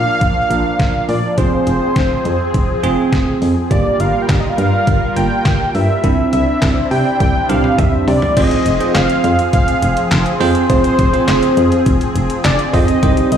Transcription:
Already playing: F3 A#3 D4 F5
0.21 A#1, kick, closed hi-hat
0.50 A#1 D4 F4 A#4, closed hi-hat
0.79 A#1, kick, snare, closed hi-hat
1.09 A#2 D5, open hi-hat
1.38 F1 C4 F4 G#4 C5, kick, closed hi-hat
1.67 F1, closed hi-hat
1.96 F1, kick, snare, closed hi-hat
2.25 F2, closed hi-hat
2.54 F1, kick, closed hi-hat
2.83 F1 C4 F4 G#4, closed hi-hat
3.13 F1, kick, snare, closed hi-hat
3.42 F2, open hi-hat
3.71 G1 G3 A#3 F4 G4 A#4 D5, kick, closed hi-hat
4.00 G1 F5, closed hi-hat
4.22 G5
4.29 G1 F5, kick, snare, clap, closed hi-hat
4.40 D#5
4.49 F5
4.58 G2 F5, closed hi-hat
4.87 G1, kick, closed hi-hat
5.16 G1 A#3 F4 A#4 G5, closed hi-hat
5.45 G1, kick, snare, clap, closed hi-hat
5.75 G2 E5, open hi-hat
6.04 C2 C4 D4 E4, kick, closed hi-hat
6.33 C2 E5, closed hi-hat
6.62 C2, kick, snare, clap, closed hi-hat
6.91 C3 G5, open hi-hat
7.20 C2 G5, kick, closed hi-hat, high tom
7.49 C2 C4 D4 G4 F5, closed hi-hat, mid tom
7.64 mid tom
7.78 C2 E5, kick, closed hi-hat, mid tom
8.08 C3 D5, floor tom, open hi-hat
8.22 floor tom
8.37 F1 F3 C4 F4 G#4 C5 D#5, kick, closed hi-hat, crash
8.51 closed hi-hat
8.66 F1, closed hi-hat
8.80 C4 F4 G#4 C5, closed hi-hat
8.95 F1 F5, snare, clap, closed hi-hat
9.10 closed hi-hat
9.24 F2, closed hi-hat
9.39 closed hi-hat
9.53 F1 F5, kick, closed hi-hat
9.68 closed hi-hat
9.82 F1, closed hi-hat
9.97 closed hi-hat
10.11 F1, snare, clap, closed hi-hat
10.26 closed hi-hat
10.41 F2 C4 F4 G#4 C5, open hi-hat
10.55 closed hi-hat
10.70 F1 C4 F4 G#4 C5, kick, closed hi-hat
10.84 closed hi-hat
10.99 F1, kick, closed hi-hat
11.13 C4 F4 G#4 C5, closed hi-hat
11.28 F1, snare, clap, closed hi-hat
11.43 closed hi-hat
11.57 F2, closed hi-hat
11.72 closed hi-hat
11.86 F1, kick, closed hi-hat
12.01 closed hi-hat
12.15 F1, closed hi-hat
12.30 closed hi-hat
12.44 F1 D5, snare, clap, closed hi-hat
12.59 closed hi-hat
12.73 F2 C4 F4 G#4 C5 D#5, kick, open hi-hat
12.88 closed hi-hat
13.03 C2 C3 G3 C4 D#4 G4 C5, kick, closed hi-hat
13.17 closed hi-hat
13.32 C2 D#5, closed hi-hat

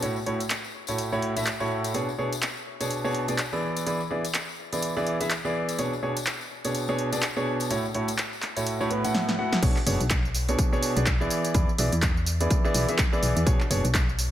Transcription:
0.02 A2 A3 E4 F#4 C#5, closed hi-hat, tambourine
0.16 tambourine
0.26 A2 A3 E4 F#4 C#5, closed hi-hat
0.40 closed hi-hat, tambourine
0.50 clap, closed hi-hat, tambourine
0.64 tambourine
0.87 A2 A3 E4 F#4 C#5, closed hi-hat, tambourine
0.98 closed hi-hat, tambourine
1.12 A2 A3 E4 F#4 C#5, tambourine
1.22 closed hi-hat
1.36 A2 A3 E4 F#4 E5, closed hi-hat, tambourine
1.46 clap, closed hi-hat, tambourine
1.60 A2 A3 E4 F#4 C#5, tambourine
1.84 closed hi-hat, tambourine
1.94 B2 B3 D4 G#4 C#5, closed hi-hat, tambourine
2.09 tambourine
2.18 B2 B3 D4 G#4 C#5
2.33 closed hi-hat, tambourine
2.42 clap, closed hi-hat, tambourine
2.57 tambourine
2.81 B2 B3 D4 G#4 C#5, closed hi-hat, tambourine
2.90 closed hi-hat, tambourine
3.04 B2 B3 D4 G#4 C#5, tambourine
3.15 closed hi-hat
3.28 B2 B3 D4 G#4 D5, closed hi-hat, tambourine
3.38 clap, closed hi-hat, tambourine
3.53 E3 B3 E4 G#4 D5, tambourine
3.77 closed hi-hat, tambourine
3.86 E3 B3 E4 G#4 D5, closed hi-hat, tambourine
4.01 tambourine
4.10 E3 B3 E4 G#4 D5
4.25 closed hi-hat, tambourine
4.34 clap, closed hi-hat, tambourine
4.49 tambourine
4.73 E3 B3 E4 G#4 D5, closed hi-hat, tambourine
4.82 closed hi-hat, tambourine
4.97 E3 B3 E4 G#4 D5, tambourine
5.07 closed hi-hat
5.21 E3 B3 E4 G#4 E5, closed hi-hat, tambourine
5.30 clap, closed hi-hat, tambourine
5.45 E3 B3 E4 G#4 D5, tambourine
5.69 closed hi-hat, tambourine
5.79 B2 B3 D4 G#4 C#5, closed hi-hat, tambourine
5.93 tambourine
6.03 B2 B3 D4 G#4 C#5
6.17 closed hi-hat, tambourine
6.26 clap, closed hi-hat, tambourine
6.41 tambourine
6.65 B2 B3 D4 G#4 C#5, closed hi-hat, tambourine
6.75 closed hi-hat, tambourine
6.88 B2 B3 D4 G#4 C#5, tambourine
6.99 closed hi-hat
7.12 B2 B3 D4 G#4 D5, closed hi-hat, tambourine
7.22 clap, closed hi-hat, tambourine
7.36 B2 B3 D4 G#4 C#5, tambourine
7.60 closed hi-hat, tambourine
7.70 A2 A3 E4 F#4 C#5, closed hi-hat, tambourine
7.85 tambourine
7.95 A2 A3 E4 F#4 C#5, closed hi-hat
8.08 closed hi-hat, tambourine
8.18 clap, closed hi-hat, tambourine
8.33 tambourine
8.42 clap, closed hi-hat
8.56 A2 A3 E4 F#4 C#5, closed hi-hat, tambourine
8.66 closed hi-hat, tambourine, swell
8.80 A2 A3 E4 F#4 C#5, tambourine
8.90 A2 A3 E4 F#4 B4, closed hi-hat
9.04 A2 A3 E4 F#4 F#5, closed hi-hat, tambourine
9.15 snare
9.29 snare
9.39 A3 E4 F#4 F#5
9.53 snare
9.62 B1 B2 B3 D4 G#4 C#5, kick, closed hi-hat, tambourine, crash
9.76 clap, tambourine
9.86 F#1 B2 B3 D4 G#4 C#5, open hi-hat, tambourine
10.00 B1, closed hi-hat, tambourine
10.10 kick, clap, closed hi-hat, tambourine
10.25 tambourine
10.35 open hi-hat, tambourine
10.49 B2 B3 D4 G#4 C#5, closed hi-hat, tambourine
10.59 kick, closed hi-hat, tambourine
10.73 B2 B3 D4 G#4 C#5, tambourine
10.83 open hi-hat, tambourine
10.96 B1 B2 B3 D4 G#4 D5, closed hi-hat, tambourine
11.06 kick, clap, closed hi-hat, tambourine
11.21 E3 B3 E4 G#4 D5, tambourine
11.30 open hi-hat, tambourine
11.45 closed hi-hat, tambourine
11.54 E2 E3 B3 E4 G#4 D5, kick, closed hi-hat, tambourine
11.69 tambourine
11.78 B1 E3 B3 E4 G#4 D5, open hi-hat, tambourine
11.92 E2, closed hi-hat, tambourine
12.02 kick, clap, closed hi-hat, tambourine
12.17 tambourine
12.26 open hi-hat, tambourine
12.41 E3 B3 E4 G#4 D5, closed hi-hat, tambourine
12.51 kick, closed hi-hat, tambourine
12.65 E3 B3 E4 G#4 D5, tambourine
12.74 B1, open hi-hat, tambourine
12.89 E3 B3 E4 G#4 E5, closed hi-hat, tambourine
12.98 kick, clap, closed hi-hat, tambourine
13.13 E3 B3 E4 G#4 D5, tambourine
13.22 B1, open hi-hat, tambourine
13.36 E2, closed hi-hat, tambourine
13.46 B1 B2 B3 D4 G#4 C#5, kick, closed hi-hat, tambourine
13.60 clap, tambourine
13.70 F#1 B2 B3 D4 G#4 C#5, open hi-hat, tambourine
13.84 B1, closed hi-hat, tambourine
13.94 kick, clap, closed hi-hat, tambourine
14.09 tambourine
14.19 open hi-hat, tambourine

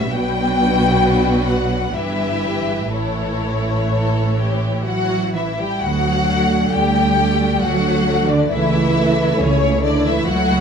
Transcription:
Already playing: B4 E5
0.11 B1 B2 F#3 D4 F#4 B4 G5
1.47 F#5
1.93 G1 G2 E3 E4 G4 B4 E5
2.90 A1 A2 E3 E4 A4 C#5
3.91 A4
4.39 G4
4.85 F#3 F#4 F#5
5.35 E3 E4 E5
5.58 G3 G4 G5
5.81 D2 F#3 F#4 F#5
6.27 A3 D4
6.70 D2 G3 G4 G5
7.16 A3 D4
7.61 D2 F#3 F#4 F#5
8.06 A3 D4
8.28 D3 D4 D5
8.49 C#2 E3 A3 E4 E5
8.94 A3 E4
9.38 C#2 C#3 C#4 C#5
9.83 D3 A3 D4 E4 D5
10.05 E3 E4 E5
10.25 C#2 F#3 F#4 F#5

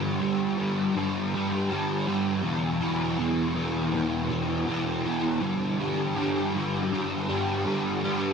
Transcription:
Already playing: G2 D3 G3
0.20 G2 D3 G3
0.57 D3 G3
0.95 G2 D3 G3
1.34 D3 G3
1.69 G2 D3 G3
2.06 D3 G3
2.42 E2 B2 E3
2.81 B2 E3
3.18 E2 B2 E3
3.55 B2 E3
3.92 E2 B2 E3
4.29 B2 E3
4.67 E2 B2 E3
5.04 B2 E3
5.40 G2 D3 G3
5.79 D3 G3
6.15 G2 D3 G3
6.54 D3 G3
6.91 G2 D3 G3
7.28 D3 G3
7.65 G2 D3 G3
8.03 D3 G3

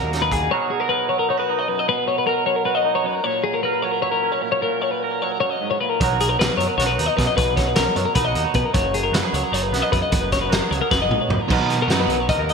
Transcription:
Already playing: B2 F#3 D#4 F#4 A#4
0.02 D#2
0.12 D#4 F#4, snare, closed hi-hat
0.22 B4
0.32 F#2 G#4, kick, closed hi-hat
0.51 B2 F#3 D#4 F#4 A#4 C#5
0.70 G#4
0.80 A#4
0.89 A#4 B4
1.09 F#3 C#5
1.19 A#4
1.29 D#4 C#5
1.37 F#4 B4
1.50 D#4
1.59 D#5
1.68 F#2 B4
1.79 D#5
1.88 B2 B4
2.08 C#5
2.18 B4
2.27 A#4
2.46 F#3 C#5
2.56 A#4
2.65 F#4 B4
2.75 D#5
2.85 D#4
2.95 C#5
3.04 F#2 B4
3.15 A#4
3.24 A#2 C#5
3.44 G#4
3.54 A#4
3.63 A#4 B4
3.82 F#3 C#5
3.92 A#4
4.02 E4 C#5
4.12 A#4
4.23 C#4
4.32 C#5
4.42 A#2 A#4
4.52 C#5
4.62 A#2 A#4
4.82 C#5
4.91 B4
5.03 A#4
5.22 F#3 C#5
5.32 A#4
5.40 F#2 C#5
5.50 D#5
5.61 G#2
5.71 C#5
5.81 A#2 B4
5.90 A#4
6.00 B1 B2 F#3 D#4 F#4 A#4 C#5, kick, closed hi-hat
6.20 G#4, closed hi-hat
6.29 A#4
6.39 B1 A#4 B4, snare, closed hi-hat
6.57 F#2 F#3 C#5, closed hi-hat
6.68 A#4
6.78 B1 F#4 C#5, snare, closed hi-hat
6.87 B4
6.98 D#2 D#4, closed hi-hat
7.06 D#5
7.17 F#2 B2 B4, kick, snare, closed hi-hat
7.27 D#5
7.36 B1 B2 B4, kick, closed hi-hat
7.56 C#5, kick, snare, closed hi-hat
7.68 B4
7.76 B1 A#4, snare, closed hi-hat
7.96 F#2 F#3 C#5, closed hi-hat
8.06 A#4
8.15 B1 D#4 B4, kick, closed hi-hat
8.25 F#4 D#5
8.35 D#2 D#4, closed hi-hat
8.44 C#5
8.54 F#2 B2 B4, kick, closed hi-hat
8.65 A#4
8.74 F#1 F#2 C#5, kick, closed hi-hat
8.94 G#4, closed hi-hat
9.03 A#4
9.12 F#1 F#4 B4, snare, closed hi-hat
9.23 G#4
9.32 C#2 F#3 C#5, closed hi-hat
9.43 A#4
9.52 F#1 D#4 C#5, closed hi-hat
9.63 B4
9.72 B1 B3, snare, closed hi-hat
9.82 D#5
9.92 F#2 C#3 B4, kick, closed hi-hat
10.02 D#5
10.12 F#1 F#2 B4, kick, closed hi-hat
10.32 C#5, kick, snare, closed hi-hat
10.41 B4
10.50 F#1 F#4 A#4, snare, closed hi-hat
10.61 G#4
10.70 C#2 F#3 C#5, closed hi-hat
10.81 A#4
10.91 F#1 F#2 B4, kick, snare
11.02 D#5
11.09 B1 G#2, mid tom
11.22 C#5
11.29 F#2 A#2 B4, floor tom
11.41 A#4
11.48 B1 B2 D#3 F#3 B3 D#4 F#4 B4, kick, crash
11.53 A#4
11.59 B2
11.70 D#4 G#4, closed hi-hat
11.81 F#4 A#4
11.87 F#2 D#3 F#3 B3 D#4, snare, closed hi-hat
11.92 D#4 B4
12.00 B4
12.08 B1 F#3, closed hi-hat
12.20 C#5
12.29 A#4 D#5, kick, closed hi-hat
12.37 D#2 A#4
12.49 D#4 D#5, closed hi-hat

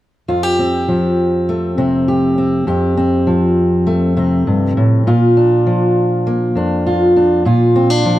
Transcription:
0.28 F2 F4
0.43 G4
0.59 C4
0.88 F3
1.49 A3
1.77 C3 C4
2.08 G4
2.38 C4
2.67 F2 G4
2.97 C4
3.27 F3
3.87 A3
4.17 C3 C4
4.47 G2
4.77 A2
5.07 A#2 F4
5.37 D4
5.66 F3
6.27 A#3
6.55 F2 D4
6.86 F4
7.16 D4
7.45 A#2 F4
7.76 C4
7.90 D4
8.05 F3

